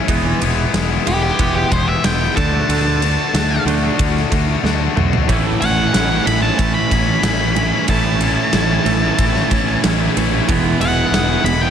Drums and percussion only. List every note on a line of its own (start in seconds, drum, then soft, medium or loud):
0.08 kick loud
0.08 ride medium
0.42 ride medium
0.74 snare medium
0.74 ride medium
1.07 ride medium
1.39 kick loud
1.39 ride medium
1.72 kick medium
1.72 ride medium
2.04 snare loud
2.04 ride loud
2.37 kick medium
2.37 ride medium
2.70 ride medium
3.02 ride medium
3.35 snare loud
3.35 ride medium
3.68 ride medium
3.99 kick loud
3.99 ride medium
4.16 snare soft
4.32 kick medium
4.32 ride medium
4.65 snare medium
4.97 mid tom medium
5.13 floor tom medium
5.29 kick loud
5.29 ride medium
5.62 ride medium
5.94 snare loud
5.94 ride medium
6.27 ride medium
6.59 kick loud
6.59 ride medium
6.91 kick medium
6.91 ride medium
7.23 snare loud
7.23 ride loud
7.56 ride medium
7.88 kick medium
7.88 ride medium
8.21 ride medium
8.53 snare loud
8.53 ride medium
8.86 ride medium
9.18 kick loud
9.18 ride medium
9.35 snare soft
9.51 kick medium
9.51 ride medium
9.84 snare loud
9.84 ride loud
10.17 snare soft
10.17 ride medium
10.49 kick loud
10.49 ride medium
10.81 ride medium
11.14 snare loud
11.14 ride medium
11.46 ride medium